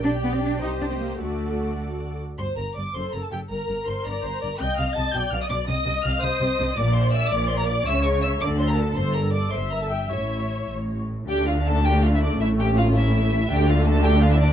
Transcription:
<<
  \new Staff \with { instrumentName = "Violin section" } { \time 6/8 \key g \minor \tempo 4. = 109 g''4. ees''4. | d''2~ d''8 r8 | c'''8 bes''8 d'''8 c'''8 bes''16 a''16 g''8 | bes''4 c'''8 bes''4. |
g'''8 f'''8 a'''8 g'''8 f'''16 ees'''16 d'''8 | ees'''4 f'''8 ees'''4. | \key d \minor d'''8 c'''8 e'''8 d'''8 c'''16 bes''16 d'''8 | e'''8 cis'''8 e'''8 d'''8 c'''16 bes''16 a''8 |
c'''8 bes''8 d'''8 c'''8 bes''16 a''16 g''8 | e''4. r4. | g''8 f''8 a''8 g''8 f''16 e''16 d''8 | e''8 g''8 f''8 e''4. |
g''8 f''8 a''8 g''8 f''16 e''16 d''8 | }
  \new Staff \with { instrumentName = "Viola section" } { \time 6/8 \key g \minor << { g'4. g'4. | fis'2~ fis'8 r8 | r4. a'4. | bes'4. d''8 c''8 d''8 |
ees''4. d''4. | ees''4. c''4. | \key d \minor d''2. | cis''4. a'4.~ |
a'4. e''4. | cis''2~ cis''16 r8. | a2.~ | a2. |
a2. | } \\ { d''4. c''4. | a'2~ a'8 r8 | r2. | r2. |
r2. | r2. | r2. | r2. |
r2. | r2. | d'2. | cis'2. |
d'2. | } >> }
  \new Staff \with { instrumentName = "Violin section" } { \time 6/8 \key g \minor g'4. g'4. | fis'2~ fis'16 r8. | c''8 bes'8 d''8 c''8 bes'16 a'16 g'8 | bes'4 c''8 bes'4. |
g''8 f''8 a''8 g''8 f''16 ees''16 d''8 | ees''4 f''8 ees''4. | \key d \minor d''8 c''8 e''8 d''8 c''16 bes'16 d''8 | e''8 cis''8 e''8 d''8 c''16 bes'16 a'8 |
c''8 bes'8 d''8 c''8 bes'16 a'16 g'8 | e'4. r4. | g'8 f'8 a'8 g'8 f'16 e'16 d'8 | e'8 g'8 f'8 e'4. |
g'8 f'8 a'8 g'8 f'16 e'16 d'8 | }
  \new Staff \with { instrumentName = "Cello section" } { \clef bass \time 6/8 \key g \minor d'8 b16 c'16 d'8 ees'8 d'16 c'16 bes8 | a4. r4. | g,8 g,8 g,8 fis,8 fis,8 fis,8 | g,8 g,8 g,8 g,8 g,8 g,8 |
c8 c8 c8 b,8 b,8 b,8 | c8 c8 c8 c8 c8 c8 | \key d \minor bes,4. bes,4. | cis4. d4. |
g,4. g,4. | a,4. a,4. | d2. | a,2. |
d2. | }
  \new Staff \with { instrumentName = "Double bass section" } { \clef bass \time 6/8 \key g \minor b,,4. c,4. | d,2~ d,8 r8 | g,,8 g,,8 g,,8 fis,,8 fis,,8 fis,,8 | g,,8 g,,8 g,,8 g,,8 g,,8 g,,8 |
c,8 c,8 c,8 b,,8 b,,8 b,,8 | c,8 c,8 c,8 c,8 c,8 c,8 | \key d \minor bes,,4. bes,,4. | cis,4. d,4. |
g,,4. g,,4. | a,,4. a,,4. | d,2. | a,,2. |
d,2. | }
>>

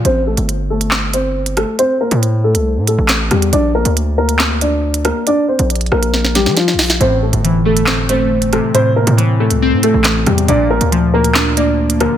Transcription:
<<
  \new Staff \with { instrumentName = "Grand piano" } { \time 4/4 \key a \phrygian \tempo 4 = 138 <c' c''>8 <a a'>8 r8 <a a'>4 <c' c''>4 <a a'>8 | <c' c''>8 <bes bes'>8 r8 <a a'>4 <a a'>4 <g g'>8 | <d' d''>8 <bes bes'>8 r8 <bes bes'>4 <d' d''>4 <bes bes'>8 | <d' d''>8 <c' c''>8 r8 <bes bes'>4 <g g'>8 <f f'>4 |
<c' c''>8 <a a'>8 r8 <a a'>4 <c' c''>4 <a a'>8 | <c' c''>8 <bes bes'>8 r8 <a a'>4 <a a'>4 <g g'>8 | <d' d''>8 <bes bes'>8 r8 <bes bes'>4 <d' d''>4 <bes bes'>8 | }
  \new Staff \with { instrumentName = "Synth keys" } { \clef bass \time 4/4 \key a \phrygian r1 | r1 | r1 | r1 |
a,4 e8 a8 c'8 a4 c8 | a,4 e8 a8 c'8 a4 c8 | bes,4 f8 bes8 d'8 bes4 d8 | }
  \new Staff \with { instrumentName = "808-style bass" } { \clef bass \time 4/4 \key a \phrygian a,,8. g,,2. r16 | r8. a,4 c,8 a,8 a,,8. e,8 | bes,,8. d,2. r16 | r8. bes,,8. bes,,4~ bes,,16 f8~ f32 bes,,8~ bes,,32 |
a,,8. g,,2. r16 | r8. a,4 c,8 a,8 a,,8. e,8 | bes,,8. d,2. r16 | }
  \new DrumStaff \with { instrumentName = "Drums" } \drummode { \time 4/4 hh8. hh16 hh8. hh16 <hc sn>8 hh8 r16 hh16 <hh ss>8 | hh8. hh16 hh8. hh16 r8 hh8 <hc hh sn>8 <hh ss>16 hh16 | hh8. hh16 hh8. hh16 <hc sn>8 hh8 r16 hh16 <hh ss>8 | hh8. hh16 hh32 hh32 hh32 hh32 ss16 hh16 sn16 sn16 <hh sn>16 sn16 <hh sn>16 sn16 <hho sn>16 <hh sn>16 |
hh8. hh16 hh8. hh16 <hc sn>8 hh8 r16 hh16 <hh ss>8 | hh8. hh16 hh8. hh16 r8 hh8 <hc hh sn>8 <hh ss>16 hh16 | hh8. hh16 hh8. hh16 <hc sn>8 hh8 r16 hh16 <hh ss>8 | }
>>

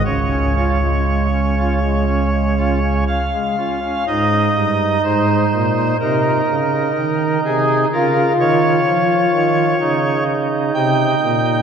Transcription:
<<
  \new Staff \with { instrumentName = "Pipe organ" } { \time 4/4 \key des \major \tempo 4 = 62 << { <des, des''>2. f''4 | \key aes \major ees''4 c''4 bes'4. aes'8 | bes'8 des''2 r8 g''4 | } \\ { r1 | ees'2 ees'2 | f'2 ees'2 | } >> }
  \new Staff \with { instrumentName = "Pipe organ" } { \clef bass \time 4/4 \key des \major des16 des'16 <des' f'>16 aes8 des'16 <des' f'>16 aes16 des'16 aes16 <des' f'>16 des'16 r16 aes16 <des' f'>16 des'16 | \key aes \major aes,8 g,8 aes,8 bes,8 c8 des8 ees8 c8 | des8 ees8 f8 ees8 des4 c8 bes,8 | }
>>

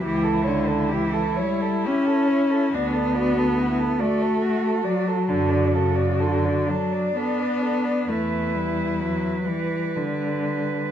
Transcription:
<<
  \new Staff \with { instrumentName = "Cello" } { \time 12/8 \key d \major \tempo 4. = 44 g'16 a'16 cis''16 a'16 g'16 a'16 cis''16 a'16 g'16 a'16 cis''16 a'16 fis'16 a'16 d''16 a'16 fis'16 a'16 d''16 a'16 fis'16 a'16 d''16 a'16 | a'16 d''16 a'16 d''16 a'16 d''16 a'16 d''16 a'16 d''16 a'16 d''16 b'16 b'16 b'16 b'16 b'16 b'16 b'16 b'16 b'16 b'16 b'16 b'16 | }
  \new Staff \with { instrumentName = "Cello" } { \time 12/8 \key d \major e'2. d'8 fis'8 e'8 fis'4. | fis'4. d'4. e'4. g4. | }
  \new Staff \with { instrumentName = "Cello" } { \clef bass \time 12/8 \key d \major e8 d8 e8 g8 cis'4 b4. a4 fis8 | d8 cis8 d8 fis8 b4 a8 g8 fis8 e8 d4 | }
  \new Staff \with { instrumentName = "Cello" } { \clef bass \time 12/8 \key d \major cis,4. r4. d,4. r4. | fis,4. r4. e,4. r4. | }
>>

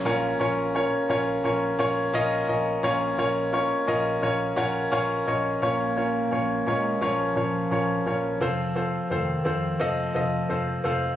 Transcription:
<<
  \new Staff \with { instrumentName = "Grand piano" } { \time 4/4 \key bes \minor \tempo 4 = 86 <des' f' bes' des''>8 <des' f' bes' des''>8 <des' f' bes' des''>8 <des' f' bes' des''>8 <des' f' bes' des''>8 <des' f' bes' des''>8 <des' f' bes' ees''>8 <des' f' bes' ees''>8 | <des' f' bes' des''>8 <des' f' bes' des''>8 <des' f' bes' des''>8 <des' f' bes' ees''>8 <des' f' bes' des''>8 <des' f' bes' des'' ges''>8 <des' f' bes' des'' f''>8 <des' f' bes' des'' ees''>8 | <des' f' bes' des''>8 <des' f' bes' des''>8 <des' f' bes' des''>8 <des' f' bes' des''>8 <des' f' bes' des''>8 <des' f' bes' des''>8 <des' f' bes' des''>8 <des' f' bes' des''>8 | <c' f' a' c''>8 <c' f' a' c''>8 <c' f' a' c''>8 <c' f' a' c''>8 <c' f' a' ees''>8 <c' f' a' ees''>8 <c' f' a' c''>8 <c' f' a' c''>8 | }
  \new Staff \with { instrumentName = "Grand piano" } { \clef bass \time 4/4 \key bes \minor bes,4. r2 r8 | bes,4. r2 r8 | bes,4. r2 r8 | r1 | }
  \new Staff \with { instrumentName = "Bass clarinet" } { \clef bass \time 4/4 \key bes \minor r1 | r1 | bes4. aes8 f8 f4. | f4 ees4 f4. r8 | }
  \new Staff \with { instrumentName = "Picked electric bass" } { \clef bass \time 4/4 \key bes \minor bes,,8 bes,,8. r16 bes,,8 bes,,8 bes,,8 bes,,8 bes,,8 | bes,,8 bes,,8. r16 bes,,8 bes,,8 bes,,8 bes,,8 bes,,8 | bes,,4 bes,,8 bes,8 bes,,8 bes,,8 bes,,8 bes,,8 | f,,4 f,,8 f,8 f,,8 f,,8 f,,8 f,,8 | }
>>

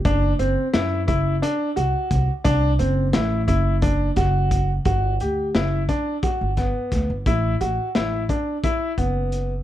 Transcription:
<<
  \new Staff \with { instrumentName = "Grand piano" } { \time 7/8 \key g \major \tempo 4 = 87 d'8 c'8 e'8 e'8 d'8 fis'4 | d'8 c'8 e'8 e'8 d'8 fis'4 | fis'8 g'8 e'8 d'8 fis'8 b4 | e'8 fis'8 e'8 d'8 e'8 b4 | }
  \new Staff \with { instrumentName = "Upright bass" } { \clef bass \time 7/8 \key g \major fis,,8 fis,,16 r16 fis,8 fis,,8 r8 c,16 r16 c,16 r16 | c,8 fis,,8 a,,8 fis,,4 fis,,4 | g,,8 d,8 fis,,8 r8. g,,8 r16 d,16 g,,16 | a,,8 a,,16 r16 a,,8 r4 fis,,4 | }
  \new DrumStaff \with { instrumentName = "Drums" } \drummode { \time 7/8 <hh bd>8 hh8 <hh sn>8 <hh bd>8 hh8 hh8 <hh bd>8 | <hh bd>8 hh8 <hh sn>8 <hh bd>8 <hh bd>8 <hh bd sn>8 <hh bd>8 | <hh bd>8 hh8 <hh sn>8 <hh bd>8 <hh bd>8 <hh bd sn>8 <hh bd sn>8 | <hh bd>8 hh8 <hh sn>8 <hh bd>8 <hh bd>8 <hh bd>8 hh8 | }
>>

